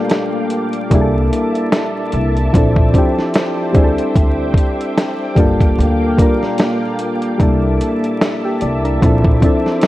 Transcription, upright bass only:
0.91 C2
2.13 C2
2.54 A#1
3.75 D2
4.16 D2
5.37 G1
5.79 D2
7.40 C2
8.62 C2
9.03 A#1

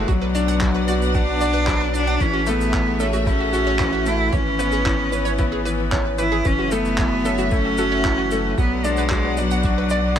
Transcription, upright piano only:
Already playing: A3
0.08 F#3
0.35 D4
0.62 F#3
0.89 F#4
1.15 D4
1.41 D5
1.68 F#3
1.94 D4
2.21 E3
2.47 A3
2.74 E3
3.00 C#4
3.27 A3
3.53 F#4
3.80 E3
4.06 A3
4.33 E3
4.59 B3
4.86 E3
5.12 C#4
5.39 B3
5.65 E3
5.92 C#4
6.18 E3
6.45 E3
6.72 A3
6.98 E3
7.25 C#4
7.51 A3
7.78 F#4
8.05 E3
8.32 A3
8.58 F#3
8.84 D4
9.11 F#3
9.38 F#4
9.64 D4
9.91 D5

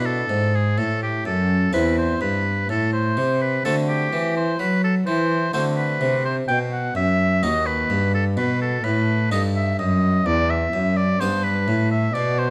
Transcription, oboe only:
0.06 A4
0.55 G#4
0.78 A4
1.03 G4
1.26 A4
1.74 B4
1.98 C5
2.21 B4
2.70 A4
2.93 C5
3.41 B4
3.65 A4
3.88 G4
4.37 C5
4.60 B4
4.84 A4
5.07 C5
5.53 C5
5.77 B4
6.25 C5
6.48 G5
6.72 F#5
6.96 E5
7.43 D#5
7.66 B4
8.14 A4
8.37 B4
8.62 A4
8.84 B4
9.31 D#5
9.56 E5
9.79 D#5
10.26 D5
10.50 E5
10.97 D5
11.20 C5
11.44 B4
11.91 E5
12.14 D5
12.39 C5

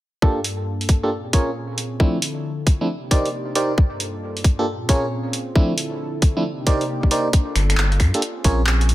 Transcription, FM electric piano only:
0.22 A#3 D4 F4 G4 A4
1.03 A#3 D4 F4 G4 A4
1.33 C#4 F4 G#4 A#4 C#5
2.00 F3 A3 C4 D4 E4
2.81 F3 A3 C4 D4 E4
3.11 D#4 G4 A#4 C5 D5
3.56 D#4 G4 A#4 C5 D5
4.59 A#3 D4 F4 G4 A4
4.89 C#4 F4 G#4 A#4 C#5
5.55 F3 A3 C4 D4 E4
6.37 F3 A3 C4 D4 E4
6.67 D#4 G4 A#4 C5 D5
7.11 D#4 G4 A#4 C5 D5
8.15 A#3 D4 F4 G4 A4
8.45 C#4 F4 G#4 A#4 C#5

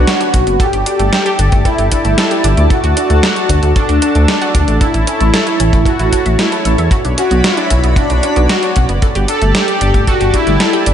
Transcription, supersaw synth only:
Already playing: F#4
0.60 G4
1.65 E4
1.92 E4
2.71 F#4
3.76 D4
4.02 D4
4.81 E4
5.86 F#4
6.39 E4
7.18 F#4
7.44 E4
7.97 D4
8.50 F#4
9.29 A4
9.55 G4
10.07 F#4
10.34 E4

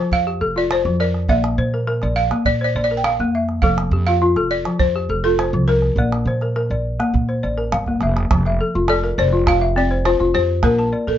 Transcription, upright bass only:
0.11 F2
0.41 F1
0.85 F2
1.29 A#1
1.58 A#2
2.03 A#1
2.46 A#2
2.75 A#1
3.20 F2
3.63 F1
3.91 F2
4.36 F1
4.80 F2
5.09 F1
5.53 C2
5.96 A#1
6.25 A#2
6.70 A#1
7.14 A#2
7.44 A1
7.73 G1
8.01 F1
8.31 F1
8.75 F1
9.18 F1
10.20 F1
10.35 F2
10.63 A#1
11.07 A#1

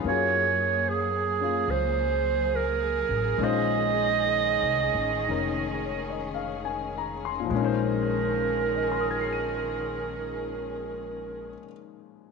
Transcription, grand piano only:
0.04 A#3 C#4 F4 F#4
0.09 G#4
1.41 C#4 F4
3.38 G#3 C#4 D#4
3.42 F4 C5
5.28 C#4 D#4 A#4
5.85 C#5
6.10 D#5
6.34 F5
6.65 G#5
6.98 A#5
7.25 C6
7.40 A#2
7.45 F3
7.50 G#3
7.55 C#4
7.59 D#4
7.64 C5
8.75 D#5
8.83 G#5
8.92 C6
9.01 D#6
9.11 G#6
9.21 C7
9.33 D#7

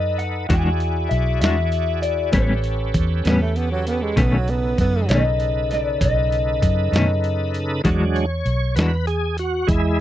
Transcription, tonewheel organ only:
Already playing: D#4 A4 B4
0.50 E4 F#4 G#4 D5
2.33 C#4 G4 A4 B4
4.18 C#3 D#4 A4 B4
7.85 F#3 G#3 D4
8.16 C#5
8.76 B4
9.07 G#4
9.39 F#4
9.67 G#3 E4

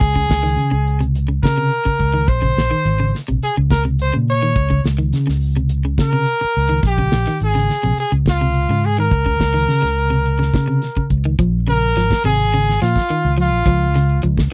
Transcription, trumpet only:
Already playing: G#4
1.43 A#4
2.28 C5
3.43 G#4
3.71 A#4
4.01 C5
4.30 C#5
6.01 A#4
6.87 G4
7.44 G#4
8.00 G#4
8.29 F4
8.85 G#4
9.00 A#4
11.69 A#4
12.25 G#4
12.82 F4
13.40 F4

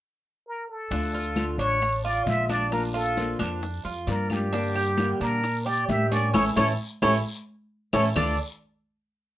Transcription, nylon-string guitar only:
0.91 D3 A3 D4 F4
1.36 D3 A3 D4 F4
1.81 muted nylon-string guitar stroke
2.26 D3 A3 D4 F4
2.49 A3 D4 F4
2.71 F3 A#3 D4 F4
3.17 F3 A#3 D4 F4
3.63 muted nylon-string guitar stroke
4.08 F3 A#3 D4 F4
4.30 A#3 D4 F4
4.53 D3 G3 A#3 D4 G4
4.99 D3 G3 A#3 D4 G4
5.44 muted nylon-string guitar stroke
5.89 G3 A#3 D4 G4
6.11 G3 A#3 D4 G4
6.34 E3 A3 C#4
6.57 E3 A3 C#4
7.02 E3 A3 C#4
7.93 E3 A3 C#4
8.16 D3 A3 D4 F4

